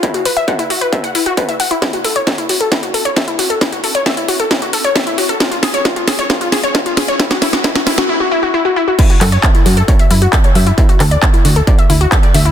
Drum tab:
CC |----------------|----------------|----------------|----------------|
HH |xxoxxxoxxxoxxxox|xxoxxxoxxxoxxxox|xxoxxxoxxxoxxxox|xxoxxxoxxxoxxxox|
CP |----------------|----------------|----------------|----------------|
SD |----------------|o---o---o---o---|o---o---o---o---|o-o-o-o-o-o-o-o-|
BD |o---o---o---o---|o---o---o---o---|o---o---o---o---|o---o---o---o---|

CC |----------------|x---------------|----------------|
HH |xxoxxxox--------|xxoxxxoxxxoxxxox|xxoxxxoxxxoxxxox|
CP |----------------|--x-x-------x---|--x-x-------x---|
SD |oooooooo--------|----------------|----------------|
BD |o---o-----------|o---o---o---o---|o---o---o---o---|